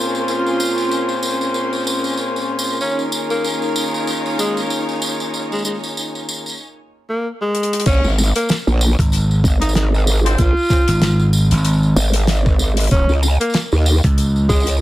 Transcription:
0.00 2.78 A#2 medium
0.00 2.77 C4 medium
0.00 2.78 C#4 medium
0.00 4.69 C#4 medium
0.00 2.78 F4 medium
0.00 2.78 G#4 medium
0.00 4.85 A#4 medium
0.00 2.77 C5 loud
0.00 6.60 G#5 medium
0.15 tambourine soft
0.28 1.18 F4 medium
0.28 tambourine soft
0.46 tambourine soft
0.60 tambourine medium
0.78 tambourine soft
0.91 tambourine soft
1.09 tambourine soft
1.23 tambourine medium
1.41 tambourine soft
1.54 tambourine soft
1.73 tambourine soft
1.75 tambourine soft
1.80 tambourine soft
1.82 tambourine soft
1.84 tambourine soft
1.87 tambourine medium
2.04 tambourine soft
2.18 tambourine soft
2.36 tambourine soft
2.59 tambourine medium
2.67 tambourine soft
2.80 6.60 D#3 medium
2.80 6.60 A#3 medium
2.80 6.60 C#4 medium
2.80 3.03 C#4 medium
2.80 6.60 D#4 medium
2.80 6.60 F4 medium
2.80 6.60 G#4 medium
2.80 6.60 A#4 loud
2.80 tambourine soft
2.95 6.60 C#5 medium
2.95 tambourine soft
3.12 tambourine medium
3.30 3.49 A#3 medium
3.30 tambourine soft
3.44 tambourine soft
3.62 tambourine soft
3.76 tambourine medium
3.94 tambourine soft
4.07 tambourine soft
4.26 tambourine soft
4.39 4.60 G#3 medium
4.39 tambourine medium
4.57 tambourine soft
4.70 tambourine soft
4.89 tambourine soft
5.02 tambourine medium
5.20 tambourine soft
5.34 tambourine soft
5.52 5.60 G#3 medium
5.52 tambourine soft
5.55 tambourine soft
5.59 tambourine soft
5.62 tambourine soft
5.65 5.77 G#3 medium
5.65 tambourine medium
5.65 tambourine soft
5.75 tambourine soft
5.79 tambourine soft
5.84 tambourine soft
5.97 tambourine soft
6.15 tambourine soft
6.29 tambourine medium
6.46 tambourine soft
6.49 tambourine soft
6.53 tambourine soft
6.55 tambourine soft
6.58 tambourine soft
7.10 7.28 A#3 medium
7.42 7.86 G#3 loud
7.55 closed hi-hat medium
7.63 closed hi-hat medium
7.73 closed hi-hat medium
7.80 closed hi-hat medium
7.86 8.01 A#1 loud
7.86 8.08 C#4 medium
7.86 kick loud
7.86 closed hi-hat medium
7.86 crash loud
7.86 tambourine soft
7.93 tambourine soft
7.97 tambourine soft
8.04 8.33 G#1 loud
8.04 tambourine soft
8.18 cross-stick soft
8.18 tambourine medium
8.36 8.54 A#3 loud
8.36 closed hi-hat medium
8.36 tambourine soft
8.49 snare loud
8.49 closed hi-hat medium
8.49 tambourine soft
8.67 8.96 A#1 medium
8.67 tambourine soft
8.81 tambourine medium
8.99 9.42 G#1 loud
8.99 kick loud
8.99 closed hi-hat medium
8.99 tambourine soft
9.12 closed hi-hat medium
9.12 tambourine soft
9.31 tambourine soft
9.44 10.37 G#1 loud
9.44 kick loud
9.44 cross-stick soft
9.44 tambourine medium
9.61 9.70 D#4 medium
9.61 closed hi-hat medium
9.61 tambourine soft
9.69 tambourine soft
9.75 9.87 D#4 medium
9.75 cross-stick soft
9.75 snare loud
9.75 closed hi-hat medium
9.94 tambourine soft
10.07 tambourine medium
10.25 10.40 C4 loud
10.25 10.40 C#4 medium
10.25 10.40 F4 medium
10.25 10.40 G#4 medium
10.25 10.40 C5 loud
10.25 closed hi-hat medium
10.25 tambourine soft
10.38 10.54 A#1 loud
10.38 11.28 F4 loud
10.38 kick loud
10.38 closed hi-hat medium
10.38 tambourine soft
10.57 tambourine soft
10.59 tambourine soft
10.61 tambourine soft
10.63 tambourine soft
10.65 tambourine soft
10.67 tambourine soft
10.69 10.82 C4 medium
10.69 10.82 C#4 medium
10.69 10.82 F4 medium
10.69 10.82 G#4 medium
10.69 10.82 C5 medium
10.69 kick loud
10.69 cross-stick soft
10.69 snare medium
10.69 tambourine soft
10.69 tambourine medium
10.88 11.49 G#1 loud
10.88 closed hi-hat medium
10.88 tambourine soft
11.02 snare loud
11.02 closed hi-hat medium
11.02 tambourine soft
11.19 tambourine soft
11.33 tambourine medium
11.51 11.94 G#1 loud
11.51 closed hi-hat medium
11.51 tambourine soft
11.58 tambourine soft
11.64 closed hi-hat medium
11.64 tambourine soft
11.73 tambourine soft
11.83 tambourine soft
11.96 12.89 G#1 medium
11.96 tambourine medium
12.13 closed hi-hat medium
12.13 tambourine soft
12.27 snare loud
12.27 closed hi-hat medium
12.27 tambourine soft
12.46 kick loud
12.46 cross-stick soft
12.46 tambourine soft
12.59 tambourine medium
12.77 closed hi-hat medium
12.77 tambourine soft
12.80 closed hi-hat medium
12.84 closed hi-hat medium
12.87 closed hi-hat soft
12.91 13.07 D#1 loud
12.91 13.13 C#4 loud
12.91 kick loud
12.91 closed hi-hat medium
12.91 tambourine soft
13.09 13.38 C#2 loud
13.09 tambourine soft
13.23 cross-stick soft
13.23 tambourine medium
13.40 13.59 A#3 loud
13.40 closed hi-hat medium
13.40 tambourine soft
13.50 tambourine soft
13.54 snare loud
13.54 closed hi-hat medium
13.54 tambourine soft
13.60 tambourine soft
13.72 14.01 D#2 loud
13.72 tambourine soft
13.86 tambourine medium
14.03 14.47 C#2 loud
14.03 kick loud
14.03 closed hi-hat medium
14.03 tambourine soft
14.18 closed hi-hat medium
14.18 tambourine soft
14.36 tambourine soft
14.49 14.81 C#2 medium
14.49 14.71 G#3 loud
14.49 kick loud
14.49 cross-stick soft
14.49 tambourine medium
14.56 tambourine soft
14.60 tambourine soft
14.67 closed hi-hat medium
14.67 tambourine soft
14.71 tambourine soft
14.77 tambourine soft

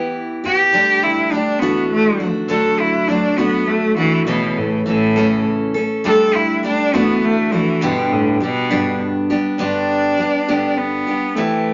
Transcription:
0.00 0.45 E3 medium
0.00 0.44 B3 medium
0.00 0.44 E4 medium
0.00 0.42 G4 medium
0.44 0.73 B3 soft
0.44 0.74 E4 soft
0.44 0.73 G4 soft
0.44 1.04 G4 loud
0.72 1.63 D3 medium
0.72 1.31 G3 medium
0.72 1.32 A3 medium
0.72 1.33 D4 medium
0.72 1.33 G4 medium
1.03 1.34 E4 medium
1.32 1.62 G3 medium
1.32 1.61 A3 medium
1.32 1.61 D4 medium
1.32 1.61 G4 medium
1.60 2.22 D3 medium
1.60 2.22 E3 medium
1.60 2.23 A3 medium
1.60 1.90 B3 medium
1.60 2.21 D4 medium
1.60 2.19 F#4 medium
1.91 2.20 A3 loud
2.20 2.49 A3 soft
2.20 2.49 D4 soft
2.20 2.50 F#4 medium
2.48 3.09 D3 medium
2.48 3.07 F#3 medium
2.48 3.09 A3 medium
2.48 3.10 D4 medium
2.48 3.10 F#4 medium
2.48 2.81 A4 medium
2.80 3.09 E4 medium
3.08 3.38 F#3 soft
3.08 3.38 A3 medium
3.08 3.40 D4 medium
3.08 3.37 D4 medium
3.08 3.36 F#4 medium
3.38 3.99 D3 medium
3.38 3.98 F#3 medium
3.38 3.99 A3 medium
3.38 3.69 B3 medium
3.38 3.97 D4 medium
3.38 3.95 F#4 medium
3.68 3.97 A3 medium
3.96 4.26 E3 medium
3.96 4.27 A3 soft
3.96 4.28 D4 soft
3.96 4.27 F#4 soft
4.27 4.60 B2 medium
4.27 4.86 C#3 medium
4.27 4.85 E3 medium
4.27 4.86 A3 medium
4.27 4.87 C#4 medium
4.27 4.88 A4 medium
4.58 4.86 A2 medium
4.86 5.44 A2 loud
4.86 5.16 E3 medium
4.86 5.16 A3 medium
4.86 5.16 C#4 medium
4.86 5.15 A4 medium
5.16 5.76 C#3 medium
5.16 5.76 E3 medium
5.16 5.76 A3 medium
5.16 5.75 C#4 medium
5.16 5.73 A4 medium
5.74 6.04 A3 soft
5.74 6.05 C#4 soft
5.74 6.04 A4 medium
6.04 6.64 D3 medium
6.04 6.62 G3 medium
6.04 6.63 A3 medium
6.04 6.64 D4 medium
6.04 6.65 G4 medium
6.04 6.36 A4 medium
6.35 6.63 E4 medium
6.63 6.93 G3 medium
6.63 6.93 A3 medium
6.63 6.92 D4 medium
6.63 6.96 D4 medium
6.63 6.93 G4 medium
6.94 7.54 D3 medium
6.94 7.53 E3 medium
6.94 7.53 A3 medium
6.94 7.26 B3 medium
6.94 7.54 D4 medium
6.94 7.51 F#4 medium
7.24 7.56 A3 medium
7.52 7.86 E3 medium
7.52 7.82 A3 soft
7.52 7.82 D4 soft
7.52 7.82 F#4 medium
7.81 8.41 G2 medium
7.81 8.14 B2 medium
7.81 8.41 D3 medium
7.81 8.39 G3 medium
7.81 8.40 B3 medium
7.81 8.41 D4 medium
7.81 8.42 G4 medium
8.13 8.41 A2 medium
8.40 8.99 B2 loud
8.40 8.70 G3 medium
8.40 8.70 B3 medium
8.40 8.70 D4 medium
8.40 8.69 G4 medium
8.70 9.31 G2 medium
8.70 9.30 D3 medium
8.70 9.30 G3 medium
8.70 9.30 B3 medium
8.70 9.29 D4 medium
8.70 9.29 G4 medium
9.30 9.58 G3 soft
9.30 9.58 B3 medium
9.30 9.59 D4 medium
9.30 9.60 G4 medium
9.58 10.18 G2 medium
9.58 10.18 D3 medium
9.58 10.17 G3 medium
9.58 10.18 B3 medium
9.58 10.78 D4 medium
9.58 10.19 D4 medium
9.58 10.20 G4 medium
10.18 10.48 G3 medium
10.18 10.48 B3 medium
10.18 10.47 D4 medium
10.18 10.47 G4 medium
10.48 11.08 G2 medium
10.48 11.08 D3 medium
10.48 11.10 G3 medium
10.48 11.08 B3 medium
10.48 11.07 D4 medium
10.48 11.07 G4 medium
10.77 11.37 B3 medium
11.07 11.37 G3 soft
11.07 11.37 B3 soft
11.07 11.38 D4 soft
11.07 11.37 G4 soft
11.35 11.74 C3 medium
11.35 11.74 E3 medium
11.35 11.74 A3 medium
11.35 11.74 C4 medium
11.35 11.74 E4 medium
11.35 11.74 G4 medium

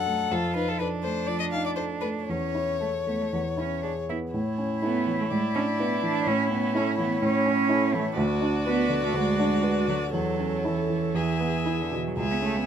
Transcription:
0.00 0.28 F#2 soft
0.00 0.34 D4 soft
0.00 0.21 A4 soft
0.00 0.33 A4 soft
0.00 0.33 F#5 medium
0.07 0.31 A3 soft
0.31 1.26 F2 soft
0.31 0.82 F4 soft
0.31 0.55 A4 medium
0.55 0.94 D#4 soft
0.55 0.70 B4 soft
0.68 0.79 A4 soft
0.79 2.31 D4 soft
0.79 1.19 A4 soft
0.79 0.88 B4 soft
1.03 1.43 A3 soft
1.03 1.28 C5 soft
1.27 1.68 F3 soft
1.27 1.39 D5 soft
1.40 1.45 D#5 soft
1.52 1.93 D#4 soft
1.52 1.65 F5 soft
1.66 1.71 D5 soft
1.76 2.18 A4 soft
1.76 1.84 C5 soft
2.01 2.28 A3 soft
2.01 2.09 B4 soft
2.25 3.30 E2 soft
2.25 4.04 C#5 soft
2.30 2.76 C#4 soft
2.55 2.96 E4 soft
2.80 2.89 A3 soft
2.80 3.22 A4 soft
3.07 3.33 A3 soft
3.07 3.23 B3 soft
3.22 3.32 A3 soft
3.32 4.31 E2 soft
3.32 3.40 B3 soft
3.57 3.82 C#4 soft
3.57 3.98 E4 soft
3.83 3.91 D4 soft
3.83 4.24 G#4 soft
4.09 4.34 B3 soft
4.09 4.18 E4 soft
4.33 5.28 A2 soft
4.33 8.14 E4 soft
4.33 5.32 C#5 soft
4.58 4.97 C#4 soft
4.82 5.22 B3 medium
4.82 5.04 E4 soft
4.82 5.05 A4 soft
5.06 5.31 E3 soft
5.20 5.31 A3 soft
5.31 6.24 A2 soft
5.31 5.40 G#3 soft
5.31 6.26 D5 soft
5.55 5.63 C#4 soft
5.55 5.94 D4 soft
5.79 6.02 B3 soft
5.79 6.01 E4 soft
5.79 6.01 B4 soft
6.02 6.27 E3 soft
6.02 6.29 D4 medium
6.26 7.20 A2 soft
6.26 6.50 C#4 medium
6.26 8.15 C#5 soft
6.51 6.77 B3 medium
6.51 6.89 C#4 soft
6.75 6.98 C#4 medium
6.75 6.96 E4 soft
6.75 6.97 A4 soft
6.98 7.23 E3 soft
6.98 7.23 B3 medium
7.22 8.15 A2 soft
7.22 7.96 C#4 medium
7.46 7.85 C#4 soft
7.69 7.91 E4 soft
7.69 7.92 A4 soft
7.94 8.18 E3 soft
7.94 8.19 A3 medium
8.17 9.11 D2 soft
8.17 10.09 F#4 soft
8.17 10.09 D5 soft
8.41 8.80 D4 soft
8.66 9.00 B3 medium
8.66 8.88 F#4 soft
8.66 8.88 B4 soft
8.89 9.29 D3 soft
9.04 9.17 A3 medium
9.14 10.10 D2 soft
9.14 9.89 G#3 medium
9.39 9.78 D4 soft
9.62 9.85 F#4 soft
9.62 9.85 B4 soft
9.88 10.13 D3 soft
9.88 9.97 F#3 soft
10.12 11.12 E2 soft
10.12 10.68 F#3 medium
10.12 11.17 A4 soft
10.12 11.17 C#5 soft
10.39 10.80 C#4 soft
10.65 11.82 E3 soft
10.65 10.87 E4 soft
10.65 10.88 A4 soft
10.89 11.15 E3 soft
11.14 12.14 E2 soft
11.14 11.97 G#4 soft
11.14 11.97 E5 soft
11.40 11.82 B3 soft
11.65 11.89 E4 soft
11.65 11.89 G#4 soft
11.81 11.95 D3 soft
11.92 12.17 B2 soft
11.92 12.08 E3 soft
12.07 12.17 F#3 soft
12.16 12.66 C#2 soft
12.16 12.23 G#3 soft
12.16 12.63 G#4 soft
12.16 12.64 E5 soft
12.32 12.36 B3 soft
12.42 12.58 A3 soft
12.42 12.66 C#4 soft
12.56 12.66 B3 soft

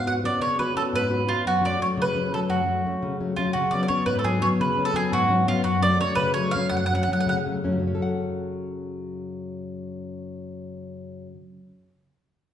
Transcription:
0.00 0.23 G#2 medium
0.06 0.23 B3 soft
0.06 0.23 C#4 soft
0.06 0.23 F#4 soft
0.06 0.12 F#5 medium
0.24 0.52 B3 medium
0.24 0.52 C#4 soft
0.24 0.52 F#4 medium
0.24 0.41 D5 medium
0.40 0.75 C#3 medium
0.40 0.59 C#5 medium
0.59 0.75 B3 soft
0.59 0.75 C#4 soft
0.59 0.75 F#4 soft
0.59 0.75 B4 medium
0.76 1.04 B3 medium
0.76 1.04 C#4 soft
0.76 1.04 F#4 medium
0.76 0.82 A4 medium
0.93 1.27 G#2 medium
0.93 1.30 B4 loud
1.10 1.25 B3 soft
1.10 1.26 C#4 soft
1.10 1.26 F#4 soft
1.27 1.41 B3 soft
1.27 1.42 C#4 medium
1.27 1.44 F4 medium
1.27 1.42 F#4 medium
1.45 1.79 F#2 medium
1.45 1.63 F#4 medium
1.61 1.78 F#3 soft
1.61 1.78 A3 soft
1.61 1.79 C#4 soft
1.61 1.80 D5 medium
1.79 2.08 F#3 soft
1.79 2.08 A3 soft
1.79 2.08 C#4 medium
1.79 1.87 C#5 medium
1.97 2.31 C#3 medium
2.02 2.32 B4 medium
2.15 2.31 F#3 soft
2.15 2.31 A3 soft
2.15 2.31 C#4 medium
2.32 2.60 F#3 medium
2.32 2.60 A3 soft
2.32 2.60 C#4 soft
2.32 2.39 A4 medium
2.49 2.83 F#2 medium
2.49 3.16 F#4 medium
2.66 2.84 F#3 soft
2.66 2.85 A3 soft
2.66 2.85 C#4 soft
2.85 3.13 F#3 soft
2.85 3.14 A3 soft
2.85 3.14 C#4 medium
3.02 3.37 C#3 medium
3.20 3.36 F#3 soft
3.20 3.37 A3 soft
3.20 3.37 C#4 soft
3.36 3.51 F#3 medium
3.36 3.52 A3 soft
3.36 3.52 C#4 soft
3.36 3.53 F4 medium
3.53 3.89 C#3 medium
3.53 3.73 F#4 medium
3.71 3.89 F#3 soft
3.71 3.88 B3 soft
3.71 3.89 C#4 soft
3.71 3.82 D5 medium
3.83 3.88 D5 medium
3.88 4.18 F#3 medium
3.88 4.18 B3 soft
3.88 4.18 C#4 medium
3.88 4.05 C#5 medium
4.06 4.41 G#2 medium
4.06 4.18 B4 medium
4.19 4.24 A4 medium
4.24 4.40 F#3 soft
4.24 4.40 B3 soft
4.24 4.41 C#4 medium
4.24 4.43 G#4 medium
4.41 4.70 F#3 medium
4.41 4.70 B3 soft
4.41 4.70 C#4 medium
4.41 4.47 C#5 medium
4.60 4.94 C#3 medium
4.60 4.85 B4 medium
4.78 4.93 F#3 soft
4.78 4.93 B3 soft
4.78 4.93 C#4 medium
4.85 4.95 A4 medium
4.94 5.22 F#3 soft
4.94 5.22 B3 soft
4.94 5.22 C#4 medium
4.94 5.11 G#4 medium
5.12 5.46 G#2 medium
5.12 5.48 F#4 medium
5.29 5.45 F#3 soft
5.29 5.46 B3 soft
5.29 5.46 C#4 medium
5.46 5.61 F#3 soft
5.46 5.61 B3 medium
5.46 5.61 C#4 medium
5.46 5.63 F4 medium
5.64 5.98 F#2 medium
5.64 5.81 F#4 medium
5.81 5.99 F#3 medium
5.81 6.00 A3 soft
5.81 6.00 C#4 soft
5.81 5.99 D5 loud
6.00 6.28 F#3 soft
6.00 6.29 A3 soft
6.00 6.29 C#4 medium
6.00 6.15 C#5 loud
6.15 6.52 C#3 medium
6.15 6.33 B4 medium
6.34 6.54 F#3 soft
6.34 6.55 A3 soft
6.34 6.55 C#4 soft
6.34 6.53 C#5 medium
6.51 6.83 F#3 medium
6.51 6.68 F5 medium
6.56 6.84 A3 soft
6.56 6.84 C#4 medium
6.69 7.07 F#2 medium
6.69 6.75 F#5 medium
6.77 6.85 F#5 medium
6.86 6.93 F#5 medium
6.91 7.08 F#3 soft
6.91 7.08 A3 soft
6.91 7.07 C#4 soft
6.91 7.02 F#5 medium
7.03 7.10 F#5 medium
7.08 7.39 F#3 medium
7.08 7.39 A3 soft
7.08 7.38 C#4 medium
7.13 7.19 F#5 medium
7.20 7.26 F#5 medium
7.26 7.64 C#3 medium
7.26 7.35 F#5 medium
7.46 7.63 F#3 soft
7.46 7.63 A3 soft
7.46 7.63 C#4 soft
7.64 11.27 F#2 medium
7.64 7.78 F#3 medium
7.64 7.80 A3 soft
7.64 7.80 C#4 medium
7.72 11.33 C#3 medium
7.80 11.40 F#3 medium
7.87 11.48 C#4 medium
7.95 11.56 A4 soft
8.02 11.63 F#5 medium

